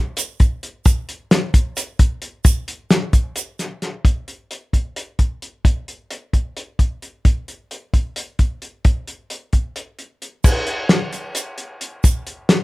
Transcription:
0.17 closed hi-hat medium
0.17 shaker medium
0.40 kick medium
0.40 closed hi-hat medium
0.40 shaker soft
0.63 closed hi-hat medium
0.85 kick loud
0.85 closed hi-hat medium
0.85 shaker soft
1.09 closed hi-hat medium
1.31 snare loud
1.31 closed hi-hat medium
1.31 shaker soft
1.54 kick medium
1.54 closed hi-hat medium
1.54 shaker soft
1.77 closed hi-hat medium
1.77 shaker medium
1.99 kick medium
1.99 closed hi-hat medium
2.22 closed hi-hat medium
2.45 kick loud
2.45 closed hi-hat medium
2.45 shaker medium
2.68 closed hi-hat medium
2.91 snare loud
2.91 closed hi-hat medium
2.91 shaker soft
3.13 kick medium
3.13 closed hi-hat medium
3.13 shaker soft
3.36 closed hi-hat medium
3.36 shaker medium
3.59 snare soft
3.59 closed hi-hat medium
3.59 shaker soft
3.82 snare soft
3.82 closed hi-hat medium
4.05 kick medium
4.05 closed hi-hat medium
4.28 closed hi-hat soft
4.51 closed hi-hat medium
4.73 kick medium
4.73 closed hi-hat soft
4.96 closed hi-hat medium
5.19 kick medium
5.19 closed hi-hat soft
5.42 closed hi-hat soft
5.65 kick medium
5.65 closed hi-hat medium
5.88 closed hi-hat soft
6.11 closed hi-hat medium
6.33 kick medium
6.33 closed hi-hat soft
6.57 closed hi-hat medium
6.79 kick medium
6.79 closed hi-hat soft
7.02 closed hi-hat soft
7.25 kick medium
7.25 closed hi-hat medium
7.48 closed hi-hat soft
7.71 closed hi-hat medium
7.94 kick medium
7.94 closed hi-hat soft
8.16 closed hi-hat medium
8.39 kick medium
8.39 closed hi-hat soft
8.62 closed hi-hat soft
8.85 kick medium
8.85 closed hi-hat medium
9.08 closed hi-hat soft
9.30 closed hi-hat medium
9.53 kick medium
9.53 closed hi-hat soft
9.76 closed hi-hat medium
9.99 closed hi-hat soft
10.22 closed hi-hat soft
10.44 kick loud
10.44 crash loud
10.44 shaker medium
10.67 closed hi-hat medium
10.89 snare loud
10.89 closed hi-hat medium
11.13 closed hi-hat medium
11.13 shaker soft
11.35 closed hi-hat medium
11.35 shaker medium
11.58 closed hi-hat medium
11.81 closed hi-hat medium
12.04 kick loud
12.04 closed hi-hat medium
12.04 shaker medium
12.27 closed hi-hat medium
12.49 snare loud
12.49 closed hi-hat medium

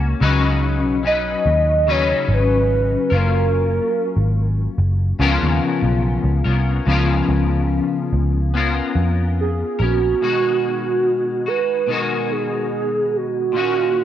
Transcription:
0.00 0.13 C#2 medium
0.00 0.21 A#3 soft
0.00 0.21 C#4 soft
0.00 0.21 F#4 medium
0.20 0.84 C#2 loud
0.20 1.04 C#3 medium
0.20 1.03 F#3 medium
0.20 1.04 C#4 medium
0.20 1.04 D#4 loud
0.20 1.05 B4 medium
0.84 1.34 B1 medium
1.03 1.88 F#3 medium
1.03 1.88 C#4 medium
1.03 1.88 D#4 medium
1.03 1.89 B4 medium
1.03 1.92 D#5 loud
1.46 2.12 D#2 medium
1.87 3.12 C#3 medium
1.87 3.14 F#3 medium
1.87 3.13 C#4 medium
1.87 3.12 D#4 medium
1.87 3.10 B4 medium
1.87 2.35 C#5 loud
2.29 2.95 G#1 loud
2.34 3.17 B4 loud
3.10 3.79 F#1 medium
3.10 5.20 C#4 medium
3.10 5.21 F4 medium
3.10 5.22 A#4 medium
3.15 5.19 F#3 soft
3.15 5.20 A#3 medium
3.15 4.81 A#4 medium
4.17 4.67 G#1 medium
4.78 5.12 F#1 medium
5.19 5.37 C#2 loud
5.19 6.45 C#3 medium
5.19 6.51 F3 medium
5.19 6.47 B3 medium
5.19 6.47 C#4 medium
5.19 6.46 F4 loud
5.19 6.44 A#4 loud
5.42 5.59 D#2 medium
5.83 6.16 B1 medium
6.24 6.41 C#2 medium
6.44 6.79 C2 medium
6.44 6.87 B3 soft
6.44 6.88 C#4 soft
6.44 6.88 F4 soft
6.44 6.87 A#4 soft
6.85 7.20 C#2 medium
6.85 8.53 C#3 medium
6.85 8.54 F3 medium
6.85 8.53 B3 medium
6.85 8.54 C#4 medium
6.90 8.55 F4 medium
6.90 8.56 A#4 medium
7.29 7.79 C#2 medium
8.13 8.79 C#2 medium
8.54 9.82 B3 medium
8.54 9.80 C#4 medium
8.54 9.80 F4 medium
8.54 9.78 A#4 medium
8.95 9.62 F2 medium
9.41 9.84 G#4 medium
9.79 10.13 A#1 medium
9.79 10.22 B3 soft
9.79 10.22 C#4 soft
9.79 11.49 F#4 medium
9.79 10.21 A#4 soft
10.22 11.46 B2 medium
10.22 11.88 D#3 medium
10.22 11.47 G#3 medium
10.22 11.47 D#4 medium
10.22 11.46 F#4 medium
11.46 11.89 G#3 soft
11.46 11.89 D#4 soft
11.46 11.88 F#4 soft
11.46 11.92 B4 loud
11.86 13.52 B2 medium
11.86 13.54 D#3 medium
11.86 13.55 G#3 medium
11.86 12.33 A#4 medium
11.91 13.56 D#4 medium
11.91 13.57 F#4 medium
12.32 13.18 G#4 medium
13.16 14.04 F#4 medium
13.52 14.04 A#2 medium
13.52 14.04 D#3 medium
13.52 14.04 A#3 medium
13.57 14.04 C#4 medium
13.57 14.04 F#4 medium

